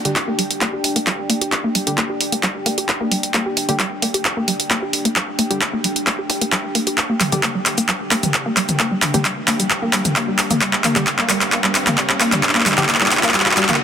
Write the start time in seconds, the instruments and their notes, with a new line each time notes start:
Already playing: ambient pad D4 G4 G5
0.05 synth stab D3 G3 G4, synth arpeggio sound G4, closed hi-hat
0.16 kick, clap, closed hi-hat
0.28 synth arpeggio sound A#3
0.39 synth arpeggio sound G3, open hi-hat
0.51 closed hi-hat
0.61 synth arpeggio sound A#3, kick, clap, closed hi-hat
0.73 synth arpeggio sound G4
0.84 open hi-hat
0.96 synth arpeggio sound A#3, closed hi-hat
1.07 synth arpeggio sound G3, kick, clap, closed hi-hat
1.30 synth arpeggio sound A#3, open hi-hat
1.41 synth arpeggio sound G4, closed hi-hat
1.52 kick, clap, closed hi-hat
1.64 synth arpeggio sound A#3
1.75 synth arpeggio sound G3, open hi-hat
1.87 synth stab D3 G3 G4, closed hi-hat
1.98 synth arpeggio sound A#3, kick, clap, closed hi-hat
2.10 synth arpeggio sound G4
2.21 open hi-hat
2.32 synth arpeggio sound A#3, closed hi-hat
2.43 synth arpeggio sound G3, kick, clap, closed hi-hat
2.66 synth arpeggio sound A#3, open hi-hat
2.78 synth arpeggio sound G4, closed hi-hat
2.89 kick, clap, closed hi-hat
3.00 synth arpeggio sound A#3
3.11 synth arpeggio sound G3, open hi-hat
3.23 closed hi-hat
3.34 synth arpeggio sound A#3, kick, clap, closed hi-hat
3.46 synth arpeggio sound G4
3.57 open hi-hat
3.69 synth stab D3 G3 G4, synth arpeggio sound A#3, closed hi-hat
3.80 synth arpeggio sound G3, kick, clap, closed hi-hat
4.02 synth arpeggio sound A#3, open hi-hat
4.14 synth arpeggio sound G4, closed hi-hat
4.25 kick, clap, closed hi-hat
4.37 synth arpeggio sound A#3
4.48 synth arpeggio sound G3, open hi-hat
4.60 closed hi-hat
4.71 synth arpeggio sound A#3, kick, clap, closed hi-hat
4.82 synth arpeggio sound G4
4.93 open hi-hat
5.05 synth arpeggio sound A#3, closed hi-hat
5.16 synth arpeggio sound G3, kick, clap, closed hi-hat
5.39 synth arpeggio sound A#3, open hi-hat
5.50 synth stab D3 G3 G4, synth arpeggio sound G4, closed hi-hat
5.61 kick, clap, closed hi-hat
5.73 synth arpeggio sound A#3
5.84 synth arpeggio sound G3, open hi-hat
5.96 closed hi-hat
6.07 synth arpeggio sound A#3, kick, clap, closed hi-hat
6.19 synth arpeggio sound G4
6.30 kick, open hi-hat
6.41 synth arpeggio sound A#3, closed hi-hat
6.52 synth arpeggio sound G3, kick, clap, closed hi-hat
6.75 synth arpeggio sound A#3, open hi-hat
6.87 synth arpeggio sound G4, closed hi-hat
6.98 kick, clap, closed hi-hat, riser, shaker
7.10 synth arpeggio sound A#3
7.20 synth arpeggio sound G3, clap, open hi-hat, mid tom, shaker
7.32 synth stab D3 G3 G4, closed hi-hat, mid tom, shaker
7.43 synth arpeggio sound A#3, kick, clap, closed hi-hat, shaker
7.55 synth arpeggio sound G3
7.66 clap, open hi-hat, shaker
7.78 synth arpeggio sound A#3, closed hi-hat, shaker
7.89 synth arpeggio sound G3, kick, clap, closed hi-hat, shaker
8.11 synth arpeggio sound A#3, clap, open hi-hat, shaker
8.23 synth arpeggio sound G3, closed hi-hat, mid tom, shaker
8.34 kick, clap, closed hi-hat, shaker
8.46 synth arpeggio sound A#3
8.57 synth arpeggio sound G3, clap, open hi-hat, shaker
8.69 closed hi-hat, mid tom, shaker
8.79 synth arpeggio sound A#3, kick, clap, closed hi-hat, shaker
8.91 synth arpeggio sound G3
9.02 clap, open hi-hat, mid tom, shaker
9.14 synth stab D3 G3 G4, synth arpeggio sound A#3, closed hi-hat, mid tom, shaker
9.25 synth arpeggio sound G3, kick, clap, closed hi-hat, shaker
9.48 synth arpeggio sound A#3, clap, open hi-hat, shaker
9.60 synth arpeggio sound G3, closed hi-hat, shaker
9.70 kick, clap, closed hi-hat, shaker
9.82 synth arpeggio sound A#3
9.93 synth arpeggio sound G3, clap, open hi-hat, shaker
10.05 closed hi-hat, mid tom, shaker
10.16 synth arpeggio sound A#3, kick, clap, closed hi-hat, shaker
10.28 synth arpeggio sound G3
10.39 clap, open hi-hat, shaker
10.51 synth arpeggio sound A#3, closed hi-hat, mid tom, shaker
10.61 synth arpeggio sound G3, kick, clap, closed hi-hat, shaker
10.73 clap
10.84 synth arpeggio sound A#3, clap, open hi-hat, mid tom, shaker
10.96 synth stab D3 G3 G4, synth arpeggio sound G3, clap, closed hi-hat, mid tom, shaker
11.07 kick, clap, closed hi-hat, shaker
11.19 synth arpeggio sound A#3, clap
11.30 synth arpeggio sound G3, clap, open hi-hat, shaker
11.41 clap, closed hi-hat, shaker
11.52 synth arpeggio sound A#3, kick, clap, closed hi-hat, shaker
11.64 synth arpeggio sound G3, clap
11.75 clap, open hi-hat, shaker
11.87 synth arpeggio sound A#3, clap, closed hi-hat, mid tom, shaker
11.98 synth arpeggio sound G3, kick, clap, closed hi-hat, shaker
12.10 clap
12.20 synth arpeggio sound A#3, clap, open hi-hat, shaker
12.32 synth arpeggio sound G3, clap, closed hi-hat, mid tom, shaker
12.43 kick, clap, closed hi-hat, shaker
12.49 clap
12.55 synth arpeggio sound A#3, clap
12.61 clap
12.66 synth arpeggio sound G3, clap, open hi-hat, mid tom, shaker
12.72 clap
12.78 synth stab D3 G3 G4, clap, closed hi-hat, mid tom, shaker
12.83 clap
12.89 synth arpeggio sound A#3, kick, clap, closed hi-hat, shaker
12.95 clap
13.01 synth arpeggio sound G3, clap
13.06 clap
13.11 clap, open hi-hat, shaker
13.17 clap
13.23 synth arpeggio sound A#3, clap, closed hi-hat, shaker
13.29 clap
13.34 synth arpeggio sound G3, kick, clap, closed hi-hat, shaker
13.40 clap
13.46 clap
13.51 clap
13.57 synth arpeggio sound G3, clap, open hi-hat, shaker
13.63 clap
13.69 synth arpeggio sound A#3, clap, closed hi-hat, mid tom, shaker
13.74 clap